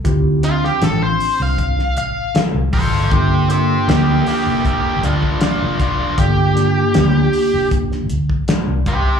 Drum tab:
HH |x-x-x-o-x-x-x-o-|x-x-x-o-x-x-x-x-|x-x-x-o-x-x-x-x-|
SD |---oo----o--o---|----o-o-----o---|--o-o----o--o---|
BD |o-------o-----o-|o-------o--o--o-|o-------o--o--o-|